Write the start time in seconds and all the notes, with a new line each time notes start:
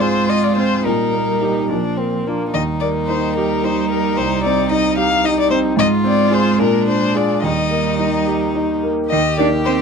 Already playing: G#2 C4 F4
0.00 G#3 F4 G#4 C5
0.29 F4 D#5
0.44 D5
0.56 C4 C5
0.84 A#2 G3 D#4 A#4
1.13 A#3
1.42 D#4 G4
1.69 A#2 F3 D4
1.97 A#3 C4
2.27 A#3 D4 F4
2.53 D#2 G3 D#4 D#5
2.80 A#3 D5
3.07 D#4 C5
3.36 G4 A#4
3.64 D#4 C5
3.90 A#3 A#4
4.17 C2 C5
4.44 C4 D5
4.71 D#4 D#5
4.97 G4 F5
5.24 D#4 D#5
5.40 D5
5.50 C4 C5
5.77 G#2 G#3 F4 D#5
6.04 C4 D5
6.30 F4 G#4 C5
6.58 A#2 D4 A#4
6.87 D4 C5
7.15 F4 G#4 D5
7.42 D#2 G3 D#4 D#5
7.71 A#3
7.99 D#4
8.27 G4
8.55 D#4
8.83 A#3
9.10 D#2 D#4 G4 D#5
9.38 A#3 D4 D#4 G4 D5
9.65 C4 C5